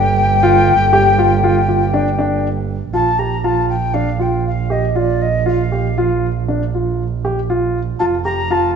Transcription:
Already playing: double bass G1, woodwind section D3 A#3 G4, flute G5
0.43 grand piano F4
0.93 grand piano G4
1.18 grand piano F4
1.44 grand piano F4
1.68 grand piano F4
1.94 grand piano D4
2.19 grand piano D4
2.93 double bass A#1, grand piano F4, flute A5
3.19 grand piano G4, flute A#5
3.44 grand piano F4, flute A5
3.69 flute G5
3.94 grand piano D4, flute F5
4.19 grand piano F4, flute G5
4.46 flute F5
4.70 grand piano G4, flute D#5
4.96 grand piano F4, flute D5
5.21 flute D#5
5.46 grand piano F4, flute F5
5.72 grand piano G4
5.98 grand piano F4
6.48 grand piano D4
6.74 grand piano F4
7.25 grand piano G4
7.50 grand piano F4
7.99 double bass F1, grand piano F4, flute A5
8.24 grand piano G4, flute A#5
8.51 grand piano F4, flute A5

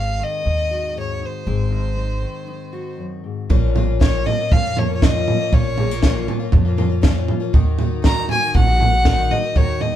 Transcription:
Already playing: upright bass G#1, steel-string acoustic guitar G#2 C4 D#4, fiddle F5
0.19 steel-string acoustic guitar D#3
0.23 fiddle D#5
0.44 upright bass D#2, steel-string acoustic guitar D#4
0.71 steel-string acoustic guitar F#4
0.95 steel-string acoustic guitar G#2
0.99 fiddle C#5
1.22 steel-string acoustic guitar D#4
1.26 fiddle C5
1.47 upright bass G#1, steel-string acoustic guitar G#2 C4
1.71 steel-string acoustic guitar D#4
1.97 steel-string acoustic guitar C4
2.22 steel-string acoustic guitar D#3
2.47 steel-string acoustic guitar D#4
2.73 steel-string acoustic guitar F#4
2.98 steel-string acoustic guitar F#2
3.24 steel-string acoustic guitar G#2
3.50 upright bass A#1, steel-string acoustic guitar A#2, twelve-string acoustic guitar A#2 F3 A#3 C#4 F4, kick, floor tom
3.75 twelve-string acoustic guitar F3 A#3 C#4 F4, steel-string acoustic guitar A#3, floor tom
4.00 twelve-string acoustic guitar A#2 F3 A#3 C#4 F4, steel-string acoustic guitar C#4, fiddle C#5, kick, snare, floor tom
4.26 twelve-string acoustic guitar F3 A#3 C#4 F4, steel-string acoustic guitar F4, fiddle D#5, floor tom
4.38 twelve-string acoustic guitar A#3 C#4 F4
4.52 upright bass F2, steel-string acoustic guitar A#3, fiddle F5, kick, floor tom
4.63 twelve-string acoustic guitar A#3 C#4 F4
4.76 twelve-string acoustic guitar F3 A#3 C#4 F4, steel-string acoustic guitar F3, fiddle C#5, floor tom
4.88 twelve-string acoustic guitar A#3 C#4 F4
4.95 fiddle C#5
5.01 twelve-string acoustic guitar A#2 F3 A#3 C#4 F4, steel-string acoustic guitar A#3, fiddle D#5, kick, snare, floor tom
5.28 steel-string acoustic guitar F3, floor tom
5.39 twelve-string acoustic guitar A#3 C#4 F4
5.52 upright bass A#1, twelve-string acoustic guitar A#2 F3 A#3 C#4 F4, steel-string acoustic guitar A#2, fiddle C#5, kick, floor tom
5.77 twelve-string acoustic guitar F3 A#3 C#4 F4, steel-string acoustic guitar G#3, floor tom
5.91 steel-string acoustic guitar A#3
6.03 twelve-string acoustic guitar A#2 F3 A#3 C#4 F4, steel-string acoustic guitar C#4, kick, snare, floor tom
6.27 twelve-string acoustic guitar F3 A#3 C#4 F4, steel-string acoustic guitar F4, floor tom
6.40 twelve-string acoustic guitar A#3 C#4 F4
6.52 upright bass F2, steel-string acoustic guitar A#3, kick, floor tom
6.65 twelve-string acoustic guitar A#3 C#4 F4
6.77 twelve-string acoustic guitar F3 A#3 C#4 F4, steel-string acoustic guitar F3, floor tom
6.90 twelve-string acoustic guitar A#3 C#4 F4
7.01 twelve-string acoustic guitar A#2 F3 A#3 C#4 F4, kick, snare, floor tom
7.06 steel-string acoustic guitar A#3
7.28 steel-string acoustic guitar F3, floor tom
7.40 twelve-string acoustic guitar A#3 C#4 F4
7.53 upright bass D#2, twelve-string acoustic guitar D#3 A#3 D#4 F#4, steel-string acoustic guitar D#3, kick, floor tom
7.78 twelve-string acoustic guitar D#3 A#3 D#4 F#4, steel-string acoustic guitar D#4, floor tom
8.02 twelve-string acoustic guitar D#3 A#3 D#4 F#4, steel-string acoustic guitar F#4, fiddle A#5, kick, snare, floor tom
8.28 twelve-string acoustic guitar D#3 A#3 F#4, steel-string acoustic guitar F#4, fiddle G#5, floor tom
8.41 twelve-string acoustic guitar A#3 D#4 F#4
8.55 upright bass A#1, steel-string acoustic guitar D#4, fiddle F#5, kick, floor tom
8.67 twelve-string acoustic guitar A#3 D#4 F#4
8.79 twelve-string acoustic guitar D#3 A#3 D#4 F#4, steel-string acoustic guitar A#3, floor tom
8.93 twelve-string acoustic guitar A#3 D#4 F#4
9.05 twelve-string acoustic guitar D#3 A#3 D#4 F#4, steel-string acoustic guitar D#4, kick, snare, floor tom
9.31 steel-string acoustic guitar A#3, fiddle D#5, floor tom
9.43 twelve-string acoustic guitar A#3 D#4 F#4
9.56 upright bass D#2, twelve-string acoustic guitar D#3 A#3 D#4 F#4, steel-string acoustic guitar D#3, fiddle C#5, kick, floor tom
9.80 twelve-string acoustic guitar D#3 A#3 D#4 F#4, steel-string acoustic guitar D#4, fiddle D#5, floor tom

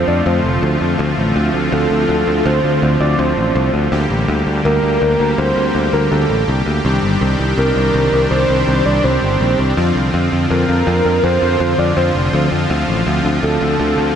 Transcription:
Already playing: supersaw synth D3 F3 A3 C4 F4
0.08 picked electric bass F2, soft synth lead D5
0.26 picked electric bass F2, soft synth lead C5
0.44 picked electric bass F1
0.63 picked electric bass D2
0.81 picked electric bass F2
0.99 picked electric bass D2, supersaw synth C4
1.18 picked electric bass A1
1.36 picked electric bass D2
1.54 picked electric bass D2
1.72 picked electric bass D2, soft synth lead A4
1.91 picked electric bass D2
2.09 picked electric bass D2
2.27 picked electric bass D2
2.46 picked electric bass D2, soft synth lead C5
2.64 picked electric bass D2
2.82 picked electric bass D2
3.00 picked electric bass D2, soft synth lead D5
3.19 picked electric bass D2, soft synth lead C5
3.37 picked electric bass A1
3.55 picked electric bass C2
3.74 picked electric bass D2
3.92 picked electric bass D2, supersaw synth G3 A#3 G4
4.10 picked electric bass A1
4.28 picked electric bass D2
4.47 picked electric bass D2
4.65 picked electric bass D2, soft synth lead A#4
4.84 picked electric bass D2
5.02 picked electric bass D2
5.20 picked electric bass D2
5.38 picked electric bass D2, soft synth lead C5
5.57 picked electric bass D2
5.75 picked electric bass D2
5.93 picked electric bass D2, soft synth lead A#4
6.12 picked electric bass D2, soft synth lead A4
6.30 picked electric bass A1
6.48 picked electric bass C2
6.66 picked electric bass D2
6.84 picked electric bass C2, supersaw synth D#3 G3 C4 D4
7.03 picked electric bass G1
7.21 picked electric bass C2
7.39 picked electric bass C2
7.58 picked electric bass C2, soft synth lead A#4
7.76 picked electric bass C2
7.94 picked electric bass C2
8.13 picked electric bass C2
8.31 picked electric bass C2, soft synth lead C5
8.49 picked electric bass C2
8.67 picked electric bass C2
8.86 picked electric bass C2, soft synth lead D5
9.04 picked electric bass C2, soft synth lead C5
9.22 picked electric bass G1
9.41 picked electric bass A#1
9.59 picked electric bass C2
9.77 picked electric bass F2, supersaw synth D3 F3 F4
9.96 picked electric bass C2
10.14 picked electric bass F2
10.32 picked electric bass F2
10.50 picked electric bass F2, soft synth lead A#4
10.69 picked electric bass F2
10.87 picked electric bass F2
11.05 picked electric bass F2
11.24 picked electric bass F2, soft synth lead C5
11.42 picked electric bass F2
11.60 picked electric bass F2
11.79 picked electric bass F2, soft synth lead D5
11.97 picked electric bass F2, soft synth lead C5
12.15 picked electric bass F1
12.33 picked electric bass D2
12.52 picked electric bass F2
12.70 picked electric bass D2, supersaw synth C4
12.88 picked electric bass A1
13.07 picked electric bass D2
13.25 picked electric bass D2
13.43 picked electric bass D2, soft synth lead A4
13.61 picked electric bass D2
13.80 picked electric bass D2
13.98 picked electric bass D2

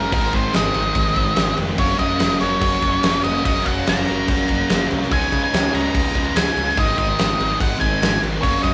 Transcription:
Already playing: distorted electric guitar C#3 G#3 C#4 D#4 G#4, overdriven electric guitar C#3 G#3 C#4 D#4, lead electric guitar A#4
0.11 picked electric bass G#1, distorted electric guitar G#2 D#3 G#3 C4 D#4 G#4, lead electric guitar A#4, kick, crash
0.32 picked electric bass G#1, distorted electric guitar G#3 C4 D#4 G#4, lead electric guitar C5, kick, crash
0.54 picked electric bass G#1, lead electric guitar D#5, snare, crash
0.73 picked electric bass G#1, distorted electric guitar G#2 D#3 G#3 C4 D#4 G#4, crash
0.95 picked electric bass G#1, kick, crash
1.15 picked electric bass G#1, distorted electric guitar G#3 C4 D#4 G#4, kick, crash
1.36 picked electric bass G#1, distorted electric guitar G#2 D#3 G#3 C4 D#4 G#4, snare, crash
1.57 picked electric bass F1, distorted electric guitar G#3 C4 D#4 G#4, crash
1.76 picked electric bass F#1, overdriven electric guitar F#2 C#3 A#3, distorted electric guitar F#3 C#4 F#4 A#4, lead electric guitar C#5, kick, crash
1.98 picked electric bass F#2, distorted electric guitar C#4 F#4 A#4, lead electric guitar D#5, kick, crash
2.20 picked electric bass F#1, snare, crash
2.40 picked electric bass F#1, distorted electric guitar C#4 F#4 A#4, lead electric guitar C#5, snare, crash
2.44 distorted electric guitar F#3
2.61 picked electric bass F#1, kick, crash
2.82 picked electric bass F#1, distorted electric guitar C#4 F#4 A#4, kick, crash
3.03 picked electric bass F#1, distorted electric guitar F#3 C#4 F#4 A#4, snare, crash
3.23 picked electric bass F#1, distorted electric guitar C#4 F#4 A#4, lead electric guitar D#5, crash
3.36 snare
3.44 picked electric bass F#1, overdriven electric guitar F#2 C#3 A#3, distorted electric guitar F#3 C#4 F#4 A#4, lead electric guitar D#5, kick, crash
3.64 picked electric bass F#1, distorted electric guitar C#4 F#4 A#4, lead electric guitar F#5, kick, crash
3.87 picked electric bass F#1, lead electric guitar A#5, snare, crash
4.07 picked electric bass F#1, distorted electric guitar F#3 C#4 F#4 A#4, crash
4.28 picked electric bass F#1, kick, crash
4.48 picked electric bass F#1, distorted electric guitar F#4 A#4, kick, crash
4.52 distorted electric guitar C#4
4.69 picked electric bass F#1, distorted electric guitar F#3 C#4 F#4 A#4, snare, crash
4.91 picked electric bass C2, distorted electric guitar C#4 F#4 A#4, crash
5.02 snare
5.11 picked electric bass C#2, distorted electric guitar C#3 G#3 C#4 D#4 G#4, lead electric guitar G#5, kick, crash
5.32 picked electric bass C#3, distorted electric guitar C#4 D#4 G#4, kick, crash
5.44 lead electric guitar G#5
5.53 picked electric bass C#2, snare, crash
5.73 picked electric bass C#2, distorted electric guitar G#3 C#4 D#4 G#4, lead electric guitar A#5, snare, crash
5.77 distorted electric guitar C#3
5.95 picked electric bass C#2, kick, crash
6.14 picked electric bass C#2, distorted electric guitar C#4 D#4 G#4, kick, crash
6.35 picked electric bass C#2, distorted electric guitar C#3 G#3 C#4 D#4 G#4, lead electric guitar G#5, snare, crash
6.55 picked electric bass C#2, distorted electric guitar C#4 D#4 G#4, crash
6.69 snare
6.75 picked electric bass G#1, distorted electric guitar G#2 D#3 G#3 C4 D#4 G#4, kick, crash
6.79 lead electric guitar D#5
6.97 picked electric bass G#1, distorted electric guitar G#3 C4 D#4 G#4, lead electric guitar D#5, kick, crash
7.19 picked electric bass G#1, snare, crash
7.38 picked electric bass G#1, distorted electric guitar D#3 G#3 C4 D#4 G#4, crash
7.43 distorted electric guitar G#2
7.60 picked electric bass G#1, lead electric guitar F#5, kick, crash
7.80 picked electric bass G#1, distorted electric guitar C4 D#4 G#4, lead electric guitar G#5, kick, crash
7.85 distorted electric guitar G#3
8.01 picked electric bass G#1, distorted electric guitar G#2 D#3 G#3 C4 D#4 G#4, snare, crash
8.22 picked electric bass G#1, distorted electric guitar G#3 C4 D#4 G#4, crash
8.42 picked electric bass F#1, distorted electric guitar F#2 C#3 F#3 A#3, lead electric guitar C#5, kick, crash
8.46 distorted electric guitar C#4 F#4
8.63 picked electric bass F#2, distorted electric guitar C#4 F#4, lead electric guitar D#5, kick, crash
8.67 distorted electric guitar F#3 A#3

